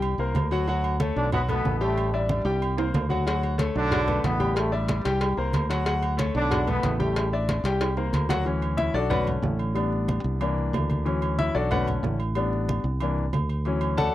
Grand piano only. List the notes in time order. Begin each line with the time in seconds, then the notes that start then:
Already playing: G3 G4 G5
0.19 A#3 A#4 C5
0.52 F#3 F#4 F#5
0.68 F#3 F#4 F#5
1.00 A3 A4 C#5
1.33 F#3 F#4 F#5
1.48 A3 A4 B4
1.81 G3 G4 G5
2.13 D4 D5 E5
2.45 G3 G4 G5
2.77 A#3 A#4 C5
3.09 F#3 F#4 F#5
3.26 F#3 F#4 F#5
3.58 A3 A4 C#5
3.91 F#3 F#4 F#5
4.07 A3 A4 B4
4.40 G3 G4 G5
4.72 D4 D5 E5
5.05 G3 G4 G5
5.38 A#3 A#4 C5
5.70 F#3 F#4 F#5
5.85 F#3 F#4 F#5
6.17 A3 A4 C#5
6.50 F#3 F#4 F#5
6.67 A3 A4 B4
7.00 G3 G4 G5
7.33 D4 D5 E5
7.65 G3 G4 G5
7.97 A#3 A#4 C5
8.29 F#3 F#4 F#5
8.45 E3 F#3 C#4
8.77 E4 E5
8.94 D4 F#4 A4 D5
9.10 D3 A3 C#4 F#4 B4 D5 F#5
9.75 G3 B3 D4
10.41 E3 A#3 D4
11.05 E3 F#3 C#4
11.39 E4 E5
11.55 D4 F#4 A4 D5
11.71 D3 A3 C#4 F#4 B4 D5 F#5
12.36 G3 B3 D4
13.01 E3 A#3 D4
13.66 E3 F#3 C#4
13.98 A4 D5 F#5 A5